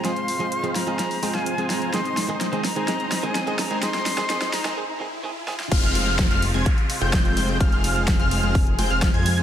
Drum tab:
CC |----------------|----------------|----------------|x---------------|
RD |----------------|----------------|----------------|--x---x---x---x-|
HH |xxoxxxoxxoo-xxox|xxo-xxoxxxo-xxox|xxo-xxox--------|xxoxxxoxxxo-xxox|
SD |o-----o-o--o--o-|o-o-o-o-o-o-o-o-|oooooooo------oo|----o-------o---|
BD |----------------|----------------|----------------|o---o---o---o---|

CC |----------------|
RD |--x---x---x---x-|
HH |xxoxxxoxoxoxxxox|
SD |----o-------o---|
BD |o---o---o---o---|